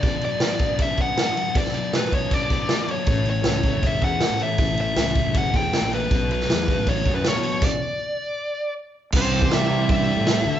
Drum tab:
CC |----------------|----------------|----------------|----------------|
HH |o-o-o-o-o-o-o-o-|o-o-o-o-o-o-o-o-|o-o-o-o-o-o-o-o-|o-o-o-o-o-o-o-o-|
SD |----o-------o---|-o--o-------o---|----o-------o---|----o-------o---|
BD |o-----o-o-o-----|o-----o-o-o-----|o-----o-o-o-----|o-----o-o-o-----|

CC |----------------|x---------------|x---------------|
HH |o-o-o-o-o-o-o-o-|----------------|----o---o---o---|
SD |---oo-------o---|----------------|----o-------o---|
BD |o-----o-o-o-----|o---------------|o--o----o-------|